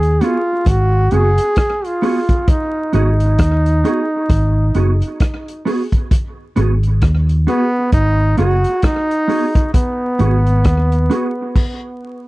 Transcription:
Already playing: fingered electric bass D#2, trombone G#4
0.03 closed hi-hat
0.21 clean electric guitar B3 F#4 G#4, trombone F4, closed hi-hat
0.66 fingered electric bass G#1, trombone F#4, kick, closed hi-hat
1.11 fingered electric bass F#1, clean electric guitar B3 F#4 G#4, trombone G#4, closed hi-hat
1.38 closed hi-hat
1.56 kick, cross-stick, closed hi-hat
1.85 trombone F4, closed hi-hat
2.02 clean electric guitar B3 F#4 G#4, open hi-hat
2.29 muted clean electric guitar stroke, kick, closed hi-hat
2.48 trombone D#4, kick, closed hi-hat
2.93 fingered electric bass G#1, clean electric guitar B3 F#4 G#4, trombone D#4, closed hi-hat
3.20 closed hi-hat
3.39 fingered electric bass D#2, kick, cross-stick, closed hi-hat
3.66 closed hi-hat
3.84 clean electric guitar B3 F#4 G#4, closed hi-hat
4.30 fingered electric bass G#1, kick, closed hi-hat
4.75 fingered electric bass F#1, clean electric guitar B3 F#4 G#4, closed hi-hat
5.02 closed hi-hat
5.20 kick, cross-stick, closed hi-hat
5.48 closed hi-hat
5.65 clean electric guitar B3 F#4 G#4, open hi-hat
5.92 kick, closed hi-hat
6.11 kick, closed hi-hat
6.56 fingered electric bass G#1, clean electric guitar B3 F#4 G#4, closed hi-hat
6.83 closed hi-hat
7.02 fingered electric bass D#2, kick, cross-stick, closed hi-hat
7.29 closed hi-hat
7.47 clean electric guitar B3 F#4 G#4, trombone B3, closed hi-hat
7.92 fingered electric bass G#1, trombone D#4, kick, closed hi-hat
8.37 fingered electric bass F#1, clean electric guitar B3 F#4 G#4, trombone F#4, closed hi-hat
8.64 closed hi-hat
8.82 trombone D#4, kick, cross-stick, closed hi-hat
9.11 closed hi-hat
9.28 clean electric guitar B3 F#4 G#4, open hi-hat
9.55 muted clean electric guitar stroke, kick, closed hi-hat
9.74 trombone B3, kick, closed hi-hat
10.19 fingered electric bass G#1, clean electric guitar B3 F#4 G#4, closed hi-hat
10.47 closed hi-hat
10.64 fingered electric bass D#2, kick, cross-stick, closed hi-hat
10.92 closed hi-hat
11.10 clean electric guitar B3 F#4 G#4, closed hi-hat
11.56 kick, crash

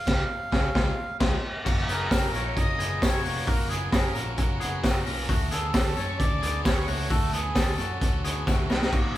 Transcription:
Already playing: melodica F5
0.06 picked electric bass C#2, overdriven electric guitar G#3 C#4 F4 C#5, kick, snare, crash
0.52 picked electric bass C#2, overdriven electric guitar G#3 C#4 F4 C#5, clean electric guitar C#4 G#4, kick, snare
0.75 picked electric bass C#2, overdriven electric guitar G#3 C#4 F4 C#5, clean electric guitar G#3 F4, kick, snare
1.20 picked electric bass C#2, overdriven electric guitar G#3 C#4 F4 C#5, clean electric guitar G#3 F4, kick, snare, crash
1.65 picked electric bass F#1, overdriven electric guitar F#3 C#4 F4 A#4, clean electric guitar A#3 F#4, kick, crash, tambourine
1.88 picked electric bass F#1, overdriven electric guitar F#3 C#4 F4 A#4, clean electric guitar B3 G#4, melodica A#4, violin section A#5, hi-hat pedal, open hi-hat, tambourine
2.11 picked electric bass F#1, clean electric guitar C#4 A#4, kick, snare, hi-hat pedal, open hi-hat, tambourine
2.23 overdriven electric guitar C#4 F4 A#4
2.33 picked electric bass A#1, clean electric guitar C#4 A#4, melodica C#5, violin section C#6, hi-hat pedal, open hi-hat, tambourine
2.56 picked electric bass F#1, overdriven electric guitar F#3 C#4 F4 A#4, melodica D#5, violin section D#6, kick, hi-hat pedal, open hi-hat
2.79 picked electric bass F#1, overdriven electric guitar F#3 C#4 F4 A#4, clean electric guitar B3 G#4, hi-hat pedal, open hi-hat
3.01 picked electric bass F#1, melodica C#5, violin section C#6, kick, snare, hi-hat pedal, open hi-hat, tambourine
3.13 overdriven electric guitar C#4 F4 A#4
3.24 picked electric bass F1, clean electric guitar A#3 F#4, hi-hat pedal, open hi-hat, tambourine
3.46 picked electric bass F#1, overdriven electric guitar F#3 C#4 F4 A#4, clean electric guitar A#3 F#4, melodica A#4, violin section A#5, kick, hi-hat pedal, open hi-hat, tambourine
3.69 picked electric bass F#1, overdriven electric guitar F#3 C#4 F4 A#4, clean electric guitar B3 G#4, melodica G#4, violin section G#5, hi-hat pedal, open hi-hat, tambourine
3.92 picked electric bass F#1, clean electric guitar C#4 A#4, kick, snare, hi-hat pedal, open hi-hat, tambourine
4.04 overdriven electric guitar C#4 F4 A#4
4.15 picked electric bass A#1, clean electric guitar C#4 A#4, melodica F#4, violin section F#5, hi-hat pedal, open hi-hat, tambourine
4.37 picked electric bass F#1, overdriven electric guitar F#3 C#4 F4 A#4, kick, hi-hat pedal, open hi-hat, tambourine
4.60 picked electric bass F#1, overdriven electric guitar F#3 C#4 A#4, clean electric guitar B3 G#4, hi-hat pedal, open hi-hat
4.83 picked electric bass F#1, clean electric guitar A#3 F#4, kick, snare, hi-hat pedal, open hi-hat, tambourine
4.94 overdriven electric guitar C#4 F4 A#4
5.06 picked electric bass B1, clean electric guitar C#4 A#4, hi-hat pedal, open hi-hat, tambourine
5.28 picked electric bass D2, overdriven electric guitar A3 C#4 F#4 A4, clean electric guitar A3 F#4, kick, hi-hat pedal, open hi-hat, tambourine
5.51 picked electric bass D2, overdriven electric guitar A3 C#4 F#4 A4, clean electric guitar B3 G#4, melodica A4, violin section A5, hi-hat pedal, open hi-hat, tambourine
5.74 picked electric bass D2, clean electric guitar C#4 A4, kick, snare, hi-hat pedal, open hi-hat, tambourine
5.86 overdriven electric guitar C#4 F#4 A4
5.95 picked electric bass F#2, clean electric guitar C#4 A4, melodica C#5, violin section C#6, hi-hat pedal, open hi-hat, tambourine
6.18 picked electric bass D2, overdriven electric guitar A3 C#4 F#4 A4, melodica D5, violin section D6, kick, hi-hat pedal, open hi-hat
6.42 picked electric bass D2, overdriven electric guitar D3 A3 C#4 F#4 A4, clean electric guitar B3 G#4, hi-hat pedal, open hi-hat
6.64 picked electric bass D2, melodica C#5, violin section C#6, kick, snare, hi-hat pedal, open hi-hat, tambourine
6.77 overdriven electric guitar C#4 F#4 A4
6.87 picked electric bass C#2, clean electric guitar A3 F#4, hi-hat pedal, open hi-hat, tambourine
7.10 picked electric bass D2, overdriven electric guitar A3 C#4 F#4 A4, clean electric guitar A3 F#4, melodica A4, violin section A5, kick, hi-hat pedal, open hi-hat, tambourine
7.33 picked electric bass D2, overdriven electric guitar A3 C#4 F#4, clean electric guitar B3 G#4, melodica G#4, violin section G#5, hi-hat pedal, open hi-hat, tambourine
7.55 picked electric bass D2, clean electric guitar C#4 A4, kick, snare, hi-hat pedal, open hi-hat, tambourine
7.67 overdriven electric guitar C#4 F#4 A4
7.78 picked electric bass F#2, clean electric guitar C#4 A4, melodica F#4, violin section F#5, hi-hat pedal, open hi-hat, tambourine
8.01 picked electric bass D2, overdriven electric guitar A3 C#4 F#4 A4, kick, hi-hat pedal, open hi-hat, tambourine
8.23 picked electric bass D2, overdriven electric guitar D3 A3 C#4 F#4 A4, clean electric guitar B3 G#4, hi-hat pedal, open hi-hat
8.47 picked electric bass D2, clean electric guitar A3 F#4, kick, snare, tambourine
8.58 overdriven electric guitar C#4 F#4 A4
8.69 picked electric bass B1, overdriven electric guitar B2 D#3 F#3 B3 D#4 A#4, clean electric guitar D#4 A#4, snare, tambourine
8.82 snare
8.93 clean electric guitar A#3 F#4, kick, tambourine, crash

